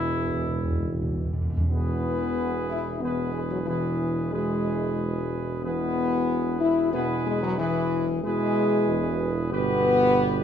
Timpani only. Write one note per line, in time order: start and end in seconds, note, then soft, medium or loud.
0.01 0.07 E2 soft
0.08 0.15 E2 soft
0.17 0.24 E2 soft
0.25 0.31 E2 soft
0.32 0.38 E2 soft
0.39 0.47 E2 soft
0.48 0.54 E2 soft
0.56 0.63 E2 soft
0.64 0.70 E2 soft
0.71 0.78 E2 medium
0.79 0.85 E2 medium
0.86 0.92 E2 medium
0.94 1.00 E2 medium
1.01 1.08 E2 medium
1.09 1.16 E2 medium
1.17 1.24 E2 medium
1.25 1.32 E2 medium
1.33 1.41 E2 medium
1.42 1.48 E2 medium
1.50 1.56 E2 medium
1.57 1.65 E2 medium